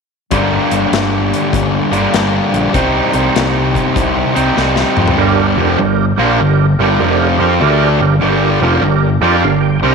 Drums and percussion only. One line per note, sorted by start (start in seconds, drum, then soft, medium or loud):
0.31 kick medium
0.31 closed hi-hat medium
0.71 closed hi-hat medium
0.93 snare medium
0.93 closed hi-hat medium
1.34 closed hi-hat medium
1.53 kick medium
1.53 closed hi-hat medium
1.93 closed hi-hat medium
2.14 snare medium
2.14 closed hi-hat medium
2.54 closed hi-hat medium
2.74 kick loud
2.74 closed hi-hat medium
3.13 closed hi-hat medium
3.36 snare medium
3.36 closed hi-hat medium
3.75 kick medium
3.75 closed hi-hat medium
3.96 kick loud
3.96 closed hi-hat medium
4.36 closed hi-hat medium
4.57 snare soft
4.76 snare soft
4.97 mid tom medium
5.08 floor tom medium